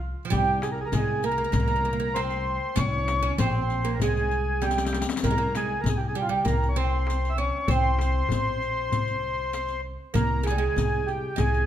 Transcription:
0.00 0.13 C2 loud
0.00 darbuka ka soft
0.25 0.32 F3 medium
0.30 0.84 C2 medium
0.30 0.59 G3 medium
0.30 0.64 G4 loud
0.30 riq medium
0.30 darbuka dum medium
0.62 0.70 G#4 medium
0.62 riq soft
0.62 darbuka tek medium
0.72 0.79 A#4 medium
0.80 0.88 G#4 medium
0.86 0.94 A#4 medium
0.92 1.44 C2 medium
0.92 1.23 G#3 medium
0.92 1.25 G#4 medium
0.92 riq medium
0.92 darbuka dum medium
1.23 1.30 A#3 medium
1.23 2.19 A#4 medium
1.23 riq soft
1.32 1.37 A#3 soft
1.38 1.43 A#3 medium
1.38 darbuka ka soft
1.44 1.51 A#3 soft
1.52 2.57 C2 loud
1.52 1.59 A#3 medium
1.52 riq medium
1.52 darbuka dum medium
1.60 1.66 A#3 soft
1.68 1.75 A#3 soft
1.68 riq soft
1.76 1.83 A#3 soft
1.85 1.91 A#3 soft
1.85 darbuka ka soft
1.93 1.99 A#3 medium
2.00 2.06 A#3 medium
2.14 2.75 C4 medium
2.14 2.78 C5 medium
2.14 riq soft
2.14 darbuka tek medium
2.30 riq soft
2.30 darbuka ka soft
2.47 darbuka ka soft
2.76 3.29 C2 loud
2.76 3.21 C#4 medium
2.76 3.35 C#5 loud
2.76 riq medium
2.76 darbuka dum medium
3.08 riq soft
3.08 darbuka tek medium
3.23 3.38 C#4 medium
3.38 4.00 A#1 medium
3.38 3.86 C4 medium
3.38 3.95 C5 medium
3.38 riq medium
3.38 darbuka dum medium
3.70 riq soft
3.70 darbuka ka soft
3.85 4.01 A#3 medium
3.85 riq soft
3.85 darbuka ka soft
3.94 4.00 A#4 medium
4.00 5.04 C2 loud
4.00 4.61 G#3 medium
4.00 4.65 G#4 medium
4.00 riq medium
4.00 darbuka dum medium
4.16 riq soft
4.16 darbuka ka soft
4.31 riq soft
4.31 darbuka ka soft
4.62 5.04 G3 medium
4.62 5.05 G4 medium
4.62 riq medium
4.62 darbuka tek medium
4.70 riq medium
4.70 darbuka ka medium
4.78 riq medium
4.78 darbuka tek medium
4.85 riq medium
4.85 darbuka ka medium
4.93 riq medium
4.93 darbuka tek medium
5.01 riq medium
5.01 darbuka ka medium
5.09 riq medium
5.09 darbuka tek medium
5.16 riq medium
5.16 darbuka ka medium
5.23 5.75 C2 medium
5.23 5.30 A#3 medium
5.23 5.55 A#4 medium
5.23 riq medium
5.23 darbuka dum medium
5.31 5.37 G#3 medium
5.38 5.55 A#3 medium
5.55 5.78 G#3 medium
5.55 5.81 G#4 medium
5.55 riq medium
5.55 darbuka tek medium
5.80 6.36 C2 medium
5.80 5.89 A#4 medium
5.85 5.97 G#4 medium
5.85 riq medium
5.85 darbuka dum medium
5.97 6.06 G4 medium
6.08 6.16 G#4 medium
6.15 6.28 G3 medium
6.15 6.23 G4 medium
6.15 riq soft
6.22 6.29 F4 medium
6.29 6.45 G3 medium
6.29 6.47 G4 medium
6.45 7.49 C2 medium
6.45 6.77 A#3 medium
6.45 6.69 A#4 medium
6.45 riq medium
6.45 darbuka dum medium
6.64 riq soft
6.69 6.76 C#5 medium
6.76 7.38 C4 medium
6.76 7.33 C5 medium
6.76 darbuka ka soft
7.07 riq soft
7.07 darbuka tek medium
7.23 riq soft
7.23 darbuka ka soft
7.29 7.37 E5 medium
7.38 7.67 C#4 medium
7.38 7.70 C#5 medium
7.68 8.20 C2 loud
7.68 9.80 C4 medium
7.68 9.81 C5 loud
7.68 riq medium
7.68 darbuka dum medium
7.99 riq soft
7.99 darbuka tek medium
8.29 8.91 A#1 medium
8.29 riq medium
8.29 darbuka dum medium
8.62 riq soft
8.77 darbuka ka soft
8.91 9.95 C2 medium
8.91 riq medium
8.91 darbuka dum medium
9.08 riq soft
9.23 darbuka ka soft
9.53 riq soft
9.53 darbuka tek medium
9.68 riq soft
9.68 darbuka ka soft
9.84 darbuka ka soft
10.14 10.67 C2 loud
10.14 10.43 A#3 medium
10.14 10.46 A#4 medium
10.14 riq medium
10.14 darbuka dum medium
10.43 10.50 G#3 medium
10.43 11.09 G#4 medium
10.43 riq soft
10.43 darbuka tek medium
10.50 10.58 G3 medium
10.58 11.35 G#3 medium
10.76 11.28 C2 medium
10.76 riq medium
10.76 darbuka dum medium
11.07 11.39 G4 medium
11.07 riq soft
11.24 darbuka ka soft
11.36 11.66 C2 medium
11.36 11.66 G#3 medium
11.36 11.66 G#4 medium
11.36 riq medium
11.36 darbuka dum medium
11.54 riq soft

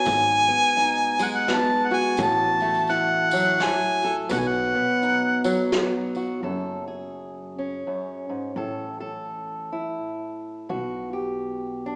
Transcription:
0.00 1.91 F#4 medium
0.00 1.24 G#5 loud
0.05 0.48 G#1 loud
0.05 2.14 G#2 medium
0.05 kick loud
0.05 closed hi-hat medium
0.05 tambourine medium
0.48 1.47 B3 medium
0.63 tambourine soft
0.77 2.15 D#4 medium
0.77 closed hi-hat medium
0.77 tambourine soft
1.19 2.15 G#3 medium
1.19 1.26 F#5 medium
1.19 tambourine loud
1.25 1.36 G#5 medium
1.35 1.54 F#5 medium
1.48 2.15 B3 medium
1.48 snare medium
1.48 closed hi-hat medium
1.48 tambourine soft
1.53 1.85 A5 loud
1.84 1.95 F#5 medium
1.91 4.04 F#4 medium
1.91 2.20 G#5 medium
1.91 tambourine soft
2.17 3.56 A1 loud
2.17 4.27 A2 medium
2.17 kick loud
2.17 closed hi-hat medium
2.17 tambourine loud
2.23 2.93 A5 loud
2.60 3.58 A3 medium
2.60 tambourine soft
2.74 tambourine soft
2.87 4.28 E4 medium
2.87 closed hi-hat medium
2.87 tambourine soft
2.92 3.65 F#5 medium
3.31 5.44 F#3 medium
3.31 tambourine loud
3.58 4.30 A3 medium
3.58 snare medium
3.58 closed hi-hat medium
3.58 tambourine soft
3.63 4.15 G#5 loud
4.02 4.28 A4 medium
4.02 tambourine soft
4.29 4.72 B1 loud
4.29 6.43 B2 medium
4.29 4.41 F#5 medium
4.29 kick medium
4.29 closed hi-hat medium
4.29 tambourine loud
4.39 4.49 G#5 medium
4.48 5.72 F#5 medium
4.75 5.73 B3 medium
5.02 6.41 D#4 medium
5.02 closed hi-hat medium
5.44 6.40 F#3 medium
5.44 tambourine loud
5.72 6.41 B3 medium
5.72 snare medium
5.72 closed hi-hat medium
6.15 6.43 F#4 medium
6.15 tambourine soft
6.43 7.81 F#1 medium
6.43 7.85 F#2 medium
6.43 6.87 A4 medium
6.88 8.54 G#4 soft
7.59 9.72 C#4 soft
7.87 8.29 F#2 soft
8.29 8.56 G#2 soft
8.56 9.95 A1 medium
8.56 10.67 A2 medium
8.56 8.99 A4 medium
9.00 10.67 A4 soft
9.72 10.67 E4 medium
10.69 11.96 B1 medium
10.69 11.96 B2 medium
10.69 11.13 F#4 medium
11.13 11.96 G4 soft
11.86 11.96 D4 medium

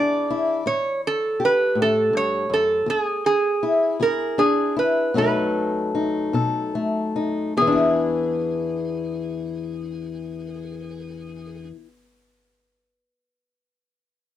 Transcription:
0.00 0.21 E2 medium
0.00 2.86 E3 medium
0.00 0.62 D4 medium
0.00 0.29 E4 medium
0.00 0.61 G#4 medium
0.00 0.66 D5 loud
0.30 0.62 E4 medium
0.66 1.32 A2 medium
0.66 1.00 C#5 medium
1.07 1.43 A4 medium
1.40 2.83 G4 medium
1.45 1.80 B4 medium
1.75 2.12 A2 medium
1.82 2.13 A4 medium
2.13 2.49 G2 medium
2.13 2.53 C#5 medium
2.50 2.86 F#2 medium
2.50 2.90 A4 medium
2.86 3.54 E2 medium
2.86 3.25 G#4 medium
3.26 3.97 G#4 medium
3.63 4.75 E4 medium
4.00 4.69 E2 medium
4.00 5.11 G#4 medium
4.00 4.40 A#4 medium
4.38 5.11 D4 medium
4.38 4.74 G#4 medium
4.77 5.11 E4 medium
4.77 5.17 B4 medium
5.14 5.86 B2 medium
5.14 7.53 F#3 medium
5.14 6.74 A3 medium
5.14 5.94 D#4 medium
5.14 6.33 A4 medium
5.14 6.72 B4 medium
5.95 7.15 D#4 medium
6.33 7.07 B2 medium
6.33 7.53 A4 medium
6.75 7.58 A3 medium
7.16 7.53 D#4 soft
7.57 11.71 E2 medium
7.57 11.68 G#4 medium
7.62 11.76 E3 medium
7.67 11.81 D4 medium
7.72 11.87 E4 medium
7.77 11.92 G#4 medium

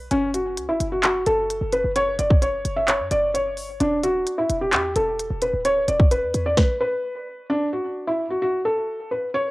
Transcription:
0.11 0.59 F#1 loud
0.11 0.29 C#4 loud
0.11 closed hi-hat medium
0.34 0.67 F#4 medium
0.34 closed hi-hat medium
0.57 0.70 C#2 loud
0.57 closed hi-hat medium
0.69 0.80 F#1 medium
0.69 0.86 E4 medium
0.80 1.25 F#1 loud
0.80 closed hi-hat medium
0.92 1.01 F#4 medium
1.03 1.21 F#4 medium
1.03 clap loud
1.03 closed hi-hat medium
1.26 1.60 F#1 loud
1.26 1.70 A4 medium
1.26 closed hi-hat medium
1.50 closed hi-hat medium
1.61 1.83 F#1 loud
1.72 1.90 B4 medium
1.72 closed hi-hat medium
1.84 2.18 F#1 loud
1.96 2.13 C#5 loud
1.96 closed hi-hat medium
2.19 2.63 F#1 loud
2.19 2.36 D5 medium
2.19 closed hi-hat medium
2.30 kick loud
2.42 2.74 C#5 medium
2.42 closed hi-hat medium
2.65 3.01 F#1 loud
2.65 closed hi-hat medium
2.76 2.85 E5 medium
2.88 3.06 C#5 medium
2.88 clap loud
2.88 closed hi-hat medium
3.00 3.11 F#2 loud
3.11 3.59 F#1 loud
3.11 3.29 D5 medium
3.11 closed hi-hat medium
3.34 3.78 C#5 medium
3.34 closed hi-hat medium
3.57 3.79 G1 loud
3.57 open hi-hat medium
3.80 4.25 E1 loud
3.80 3.98 D4 medium
3.80 closed hi-hat medium
4.04 4.36 F#4 medium
4.04 closed hi-hat medium
4.27 closed hi-hat medium
4.38 4.56 E4 medium
4.50 4.74 E1 loud
4.50 closed hi-hat medium
4.61 4.70 G4 medium
4.73 4.95 E2 loud
4.73 4.90 G4 medium
4.73 clap loud
4.73 closed hi-hat medium
4.96 5.29 E1 loud
4.96 5.39 A4 medium
4.96 closed hi-hat medium
5.19 closed hi-hat medium
5.30 5.53 E1 loud
5.42 5.60 B4 medium
5.42 closed hi-hat medium
5.54 5.87 D1 loud
5.65 5.83 C#5 loud
5.65 closed hi-hat medium
5.88 6.24 E1 loud
5.88 6.06 D5 medium
5.88 closed hi-hat medium
6.00 kick loud
6.11 6.44 B4 medium
6.11 closed hi-hat medium
6.23 6.34 E2 loud
6.34 6.56 E2 loud
6.34 closed hi-hat medium
6.46 6.55 D5 medium
6.57 6.75 B4 medium
6.57 kick loud
6.57 snare loud
6.80 7.46 B4 medium
7.50 7.67 D4 loud
7.73 8.05 F#4 medium
8.07 8.25 E4 medium
8.30 8.39 F#4 medium
8.42 8.60 F#4 medium
8.65 9.08 A4 medium
9.11 9.29 B4 medium
9.34 9.51 C#5 loud

